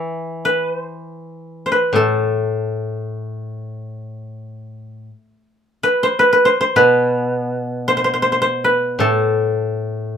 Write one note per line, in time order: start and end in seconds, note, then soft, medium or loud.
0.00 2.42 E3 soft
0.00 0.93 E5 medium
0.45 0.73 B4 medium
0.73 1.66 C5 medium
1.66 1.78 C5 soft
1.72 3.49 B4 medium
1.93 5.08 A2 soft
1.93 4.22 A4 soft
5.83 6.09 B4 medium
6.03 6.25 C5 medium
6.19 6.32 B4 medium
6.33 6.51 B4 medium
6.45 6.60 C5 medium
6.61 6.82 C5 medium
6.76 9.00 B2 soft
6.76 7.94 B4 medium
7.88 7.96 C5 medium
7.97 8.04 C5 soft
8.04 8.13 C5 medium
8.14 8.22 C5 soft
8.22 8.32 C5 medium
8.32 8.41 C5 soft
8.42 8.70 C5 medium
8.64 10.17 B4 medium
8.99 10.17 A2 soft
8.99 10.17 A4 medium